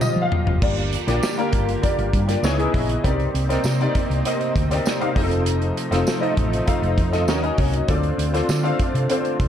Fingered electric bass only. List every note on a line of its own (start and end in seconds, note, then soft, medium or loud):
0.16 0.27 F3 loud
0.47 0.58 F1 loud
0.62 0.95 G1 loud
1.07 1.19 A#1 medium
1.53 1.75 G1 loud
1.99 2.10 G1 loud
2.13 2.35 G2 loud
2.43 2.65 C#2 loud
2.74 2.96 A#1 loud
3.04 3.26 C2 loud
3.34 3.56 C2 loud
3.64 3.86 C3 loud
4.10 4.21 C2 medium
4.56 4.78 D2 medium
5.16 5.71 F1 loud
5.91 6.02 F1 medium
6.38 6.59 A1 medium
6.82 6.99 F1 loud
6.98 7.28 F2 medium
7.28 7.50 D#2 loud
7.58 7.80 C2 loud
7.89 8.11 D2 loud
8.18 8.40 D2 loud
8.49 8.71 D3 loud
8.94 9.05 C3 medium
9.40 9.48 C2 medium